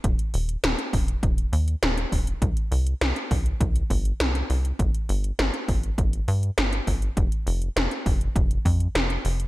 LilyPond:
<<
  \new Staff \with { instrumentName = "Analog synth bass" } { \clef bass \time 4/4 \key c \minor \tempo 4 = 101 ees,,8 ees,,8 ees,,8 ees,,8 ees,,8 ees,8 ees,,8 ees,,8 | c,8 c,8 c,8 c,8 c,8 g,,8 c,8 c,8 | g,,8 g,,8 g,,8 g,,8 g,,8 g,8 g,,8 g,,8 | f,,8 f,,8 f,,8 f,,8 f,,8 f,8 f,,8 f,,8 | }
  \new DrumStaff \with { instrumentName = "Drums" } \drummode { \time 4/4 <hh bd>16 hh16 hho16 hh16 <hh sn>16 hh16 <hho bd>16 hh16 <hh bd>16 hh16 hho16 hh16 <hh sn>16 hh16 <hho bd>16 hh16 | <hh bd>16 hh16 hho16 hh16 <hh sn>16 hh16 <hho bd>16 hh16 <hh bd>16 hh16 <hho bd>16 hh16 <hh sn>16 hh16 hho16 hh16 | <hh bd>16 hh16 hho16 hh16 <hh sn>16 hh16 <hho bd>16 hh16 <hh bd>16 hh16 hho16 hh16 <hh sn>16 hh16 <hho bd>16 hh16 | <hh bd>16 hh16 hho16 hh16 <hh sn>16 hh16 <hho bd>16 hh16 <hh bd>16 hh16 <hho bd>16 hh16 <hh sn>16 hh16 hho16 hh16 | }
>>